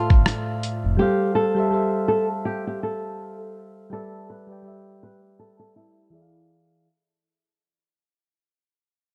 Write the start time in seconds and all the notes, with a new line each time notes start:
Already playing: A2 A3 F4 C5 D5 E5 F5
0.10 G1, kick, cross-stick
0.26 cross-stick, closed hi-hat
0.63 closed hi-hat
0.84 F1
0.97 G3 G4 A4
1.01 C5 F5
1.35 A4
1.55 G3 G4 A4 C5
1.60 E5
1.70 G3 G4 A4 C5
1.76 E5
2.08 A4
2.45 G4
2.67 G4
2.83 A4
3.90 G3 G4 A4 B4 D5
3.95 E5
4.30 B4
4.47 G3 G4 B4
4.51 D5 G5
4.62 G3 G4 B4 D5
4.68 E5
5.03 B4
5.39 A4
5.59 A4
5.76 E4
6.10 E3 E4 G#4
6.14 D5 E5
6.22 F5